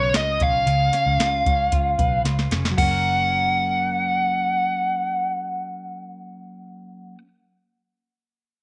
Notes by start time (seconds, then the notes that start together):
Already playing: C#3 C#4 F4 B4 C#5
0.14 C#2 F4 D#5, snare, closed hi-hat
0.40 B1 C#4 F5, kick, closed hi-hat
0.67 C#2 C#3, closed hi-hat
0.93 C#4, snare, closed hi-hat
1.06 C#2
1.19 C#2 F4, snare, closed hi-hat
1.46 C#2 C#4, kick, closed hi-hat
1.72 C#2 F4, kick, closed hi-hat
1.99 B1 B4, kick, closed hi-hat
2.25 C#2 F4, snare, closed hi-hat
2.39 snare
2.51 F1 C#4, snare, closed hi-hat
2.65 snare
2.71 F#3
2.78 F#1 A#3 F#5, kick, crash
2.82 C#4
2.91 A#4